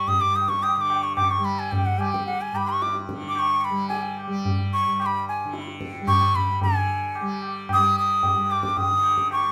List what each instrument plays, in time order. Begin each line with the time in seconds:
Already playing: tanpura G2 D3 G3
0.08 bansuri D#6, tabla tin, tabla ge
0.19 tanpura G2, bansuri D6
0.36 bansuri D#6, tabla na
0.49 bansuri C#6, tabla ke
0.63 bansuri D#6, tabla na
0.76 tanpura D3, bansuri D#6
0.81 bansuri D6
0.90 tabla na
1.03 bansuri C#6
1.16 bansuri D6, tabla na, tabla ge
1.31 bansuri C#6
1.38 tanpura G3
1.45 bansuri B5
1.59 bansuri G#5
1.72 bansuri G5, tabla tin, tabla ge
1.86 bansuri F#5
1.96 tanpura G3, bansuri G#5
2.01 tabla na
2.12 bansuri G5, tabla ke
2.26 bansuri F#5, tabla tin
2.41 bansuri G#5
2.52 tanpura G2, bansuri B5, tabla na
2.68 bansuri C#6
2.82 bansuri D6, tabla te
2.95 tabla te
3.09 tanpura D3, tabla ke
3.22 tabla te
3.29 bansuri D6
3.35 bansuri C#6 D6, tabla na
3.61 bansuri B5 C#6
3.70 tanpura G3
3.89 bansuri G#5, tabla tin
4.18 tabla na
4.28 tanpura G3
4.45 tabla tin, tabla ge
4.73 bansuri C#6
4.86 tanpura G2
5.00 bansuri C#6, tabla na
5.06 bansuri B5
5.29 bansuri G#5
5.45 tanpura D3
5.54 tabla te
5.67 tabla te
5.81 tabla ke
5.95 tabla te
6.00 tanpura G3
6.08 bansuri C#6, tabla na, tabla ge
6.36 bansuri B5, tabla ge
6.61 tanpura D3, bansuri G#5, tabla tin, tabla ge
7.15 tabla na
7.21 tanpura G3
7.42 tabla na
7.69 bansuri D#6, tabla na, tabla ge
7.77 tanpura G3
7.99 bansuri D#6
8.23 tabla tin, tabla ge
8.34 tanpura G2
8.50 bansuri D6, tabla na
8.63 tabla ke
8.77 bansuri D#6, tabla tin, tabla ge
8.91 tanpura D3
9.04 tabla na
9.18 tabla ke
9.31 bansuri C#6, tabla na